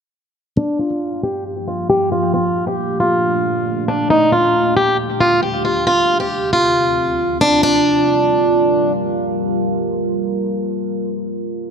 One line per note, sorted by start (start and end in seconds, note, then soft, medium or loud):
0.57 2.32 G2 medium
0.57 2.32 F3 medium
0.57 2.32 A#3 medium
0.57 0.77 D4 loud
0.79 1.21 F4 medium
1.23 1.43 G4 medium
1.68 1.88 F4 medium
1.90 2.10 G4 medium
2.12 2.32 F4 medium
2.34 4.08 A#2 medium
2.34 4.08 A3 medium
2.34 4.08 D4 medium
2.34 2.65 F4 medium
2.67 2.98 G4 medium
3.00 3.84 F4 medium
3.88 4.08 D4 medium
4.10 5.85 D#2 medium
4.10 5.85 D3 medium
4.10 4.30 D#4 loud
4.10 5.85 G4 medium
4.32 4.74 F4 medium
4.77 4.96 G4 medium
5.21 5.40 F4 medium
5.43 5.63 G4 medium
5.65 5.85 F4 medium
5.87 7.61 D2 medium
5.87 7.61 C3 medium
5.87 7.61 F4 medium
5.87 6.18 F4 loud
6.20 6.51 G4 medium
6.53 7.37 F4 medium
7.41 7.61 D4 medium
7.63 11.10 G3 medium
7.63 8.92 D4 medium
7.63 11.10 F4 medium
7.63 11.10 A#4 medium